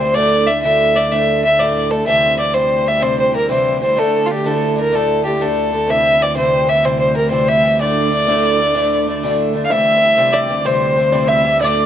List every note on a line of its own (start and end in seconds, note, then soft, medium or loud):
0.00 2.07 D2 medium
0.00 2.07 D3 medium
0.00 0.15 E3 medium
0.00 0.16 G3 medium
0.00 0.16 C4 medium
0.00 0.15 E4 medium
0.00 0.16 C5 medium
0.14 0.47 D2 medium
0.14 0.47 A2 medium
0.14 0.45 D3 medium
0.14 0.47 A3 medium
0.14 0.48 D4 medium
0.14 0.50 E4 medium
0.14 0.48 D5 loud
0.47 0.63 D3 medium
0.47 0.63 A3 medium
0.47 0.64 D4 medium
0.47 0.64 E4 medium
0.47 0.62 E5 medium
0.63 0.95 D2 medium
0.63 0.95 A2 medium
0.63 0.94 D3 medium
0.63 0.94 A3 medium
0.63 0.96 D4 medium
0.63 0.97 E4 medium
0.63 0.97 E5 loud
0.95 1.11 D3 medium
0.95 1.11 A3 medium
0.95 1.12 D4 medium
0.95 1.12 E4 medium
0.95 1.13 D5 medium
1.11 1.43 D2 medium
1.11 1.43 A2 medium
1.11 1.42 D3 medium
1.11 1.43 A3 medium
1.11 1.44 D4 medium
1.11 1.46 E4 medium
1.11 1.43 E5 medium
1.43 1.58 D3 medium
1.43 1.59 A3 medium
1.43 1.59 D4 medium
1.43 1.60 E4 medium
1.43 1.61 E5 medium
1.58 1.90 D2 medium
1.58 1.91 A2 medium
1.58 1.89 D3 medium
1.58 1.90 A3 medium
1.58 1.91 D4 medium
1.58 1.93 E4 medium
1.58 1.93 D5 medium
1.90 2.06 D3 medium
1.90 2.07 A3 medium
1.90 2.07 D4 medium
1.90 2.07 E4 medium
1.90 2.06 A4 medium
2.06 9.70 D2 medium
2.06 2.38 C3 medium
2.06 9.69 D3 medium
2.06 2.37 E3 medium
2.06 2.37 G3 medium
2.06 2.39 C4 medium
2.06 2.41 E4 medium
2.06 2.36 E5 loud
2.37 2.52 E3 medium
2.37 2.53 G3 medium
2.37 2.54 C4 medium
2.37 2.54 E4 medium
2.37 2.56 D5 medium
2.53 2.85 C3 medium
2.53 2.84 E3 medium
2.53 2.85 G3 medium
2.53 2.85 C4 medium
2.53 2.88 E4 medium
2.53 2.89 C5 medium
2.84 2.99 E3 medium
2.84 3.00 G3 medium
2.84 3.01 C4 medium
2.84 3.01 E4 medium
2.84 3.05 E5 medium
3.00 3.33 C3 medium
3.00 3.31 E3 medium
3.00 3.32 G3 medium
3.00 3.33 C4 medium
3.00 3.35 E4 medium
3.00 3.18 C5 medium
3.20 3.34 C5 medium
3.31 3.48 E3 medium
3.31 3.48 G3 medium
3.31 3.49 C4 medium
3.31 3.49 E4 medium
3.36 3.50 A#4 medium
3.48 3.81 C3 medium
3.48 3.79 E3 medium
3.48 3.80 G3 medium
3.48 3.81 C4 medium
3.48 3.83 E4 medium
3.48 3.80 C5 medium
3.80 3.96 E3 medium
3.80 3.97 G3 medium
3.80 3.97 C4 medium
3.80 3.97 E4 medium
3.80 4.00 C5 medium
3.96 4.28 D2 medium
3.96 4.28 A2 medium
3.96 4.26 D3 medium
3.96 4.27 A3 medium
3.96 4.28 D4 medium
3.96 4.30 E4 medium
3.96 4.28 A4 medium
4.27 4.44 D3 medium
4.27 4.45 A3 medium
4.27 4.45 D4 medium
4.27 4.33 F4 medium
4.31 4.45 E4 medium
4.31 4.48 G4 medium
4.44 4.76 D2 medium
4.44 4.77 A2 medium
4.44 4.74 D3 medium
4.44 4.76 A3 medium
4.44 4.77 D4 medium
4.44 4.79 E4 medium
4.44 4.78 A4 medium
4.76 4.92 D3 medium
4.76 4.92 A3 medium
4.76 4.92 D4 medium
4.76 4.93 E4 medium
4.80 4.97 A#4 medium
4.92 5.24 D2 medium
4.92 5.24 A2 medium
4.92 5.21 D3 medium
4.92 5.22 A3 medium
4.92 5.23 D4 medium
4.92 5.25 E4 medium
4.92 5.24 A4 medium
5.22 5.39 D3 medium
5.22 5.40 A3 medium
5.22 5.40 D4 medium
5.22 5.41 E4 medium
5.22 5.43 G4 medium
5.39 5.72 D2 medium
5.39 5.72 A2 medium
5.39 5.69 D3 medium
5.39 5.71 A3 medium
5.39 5.72 D4 medium
5.39 5.74 E4 medium
5.39 5.92 A4 medium
5.71 5.87 D3 medium
5.71 5.88 A3 medium
5.71 5.88 D4 medium
5.71 5.89 E4 medium
5.87 6.20 C3 medium
5.87 6.19 E3 medium
5.87 6.19 G3 medium
5.87 6.20 C4 medium
5.87 6.22 E4 medium
5.87 6.24 E5 loud
6.19 6.34 E3 medium
6.19 6.35 G3 medium
6.19 6.35 C4 medium
6.19 6.36 E4 medium
6.19 6.36 D5 medium
6.35 6.67 C3 medium
6.35 6.66 E3 medium
6.35 6.67 G3 medium
6.35 6.68 C4 medium
6.35 6.70 E4 medium
6.35 6.71 C5 medium
6.67 6.83 E3 soft
6.67 6.83 G3 medium
6.67 6.84 C4 medium
6.67 6.85 E4 medium
6.67 6.86 E5 medium
6.83 7.15 C3 medium
6.83 7.13 E3 medium
6.83 7.14 G3 medium
6.83 7.15 C4 medium
6.83 7.17 E4 medium
6.83 6.99 C5 medium
7.00 7.14 C5 medium
7.14 7.29 E3 medium
7.14 7.30 G3 medium
7.14 7.31 C4 medium
7.14 7.31 E4 medium
7.14 7.30 A#4 medium
7.30 7.63 C3 medium
7.30 7.61 E3 medium
7.30 7.62 G3 medium
7.30 7.63 C4 medium
7.30 7.65 E4 medium
7.30 7.50 C5 medium
7.48 7.80 E5 medium
7.61 7.78 E3 medium
7.61 7.79 G3 medium
7.61 7.80 C4 medium
7.61 7.80 E4 medium
7.79 8.11 D2 medium
7.79 8.11 A2 medium
7.79 8.09 D3 medium
7.79 8.10 A3 medium
7.79 8.11 D4 medium
7.79 8.13 E4 medium
7.79 9.35 D5 loud
8.10 8.26 D3 soft
8.10 8.26 A3 medium
8.10 8.27 D4 medium
8.10 8.27 E4 medium
8.25 8.58 D2 medium
8.25 8.58 A2 medium
8.25 8.56 D3 medium
8.25 8.57 A3 medium
8.25 8.58 D4 medium
8.25 8.60 E4 medium
8.57 8.73 D3 medium
8.57 8.74 A3 medium
8.57 8.74 D4 medium
8.57 8.75 E4 medium
8.73 9.06 D2 medium
8.73 9.06 A2 medium
8.73 9.05 D3 medium
8.73 9.06 A3 medium
8.73 9.07 D4 medium
8.73 9.09 E4 medium
9.06 9.22 D3 medium
9.06 9.23 A3 medium
9.06 9.23 D4 medium
9.06 9.24 E4 medium
9.23 9.54 D2 medium
9.23 9.55 A2 medium
9.23 9.52 D3 medium
9.23 9.53 A3 medium
9.23 9.54 D4 medium
9.23 9.56 E4 medium
9.53 9.70 D3 medium
9.53 9.70 A3 medium
9.53 9.71 D4 medium
9.53 9.71 E4 medium
9.64 9.71 F5 medium
9.64 9.73 F5 medium
9.70 11.86 D2 medium
9.70 10.02 C3 medium
9.70 11.86 D3 medium
9.70 10.01 E3 medium
9.70 10.01 G3 medium
9.70 10.03 C4 medium
9.70 10.05 E4 medium
9.70 10.30 E5 medium
9.70 10.33 E5 medium
9.70 10.35 E5 loud
10.01 10.16 E3 medium
10.01 10.17 G3 medium
10.01 10.18 C4 medium
10.01 10.18 E4 medium
10.17 10.49 C3 medium
10.17 10.48 E3 medium
10.17 10.49 G3 medium
10.17 10.49 C4 medium
10.17 10.51 E4 medium
10.33 10.68 D5 medium
10.33 10.63 D5 medium
10.48 10.64 E3 medium
10.48 10.65 G3 medium
10.48 10.65 C4 medium
10.48 10.66 E4 medium
10.64 10.97 C3 medium
10.64 10.96 E3 medium
10.64 10.96 G3 medium
10.64 10.98 C4 medium
10.64 10.99 E4 medium
10.64 11.31 C5 medium
10.64 11.10 C5 medium
10.64 11.29 C5 medium
10.97 11.12 E3 medium
10.97 11.12 G3 medium
10.97 11.12 C4 medium
10.97 11.13 E4 medium
11.12 11.45 C3 medium
11.12 11.43 E3 medium
11.12 11.44 G3 medium
11.12 11.45 C4 medium
11.12 11.47 E4 medium
11.12 11.27 D5 medium
11.28 11.60 E5 medium
11.28 11.58 E5 medium
11.28 11.62 E5 medium
11.44 11.60 E3 medium
11.44 11.61 G3 medium
11.44 11.61 C4 medium
11.44 11.61 E4 medium
11.59 11.86 D2 medium
11.59 11.86 A2 medium
11.59 11.86 D3 medium
11.59 11.86 A3 medium
11.59 11.86 D4 medium
11.59 11.86 E4 medium
11.59 11.86 D5 medium
11.59 11.86 D5 loud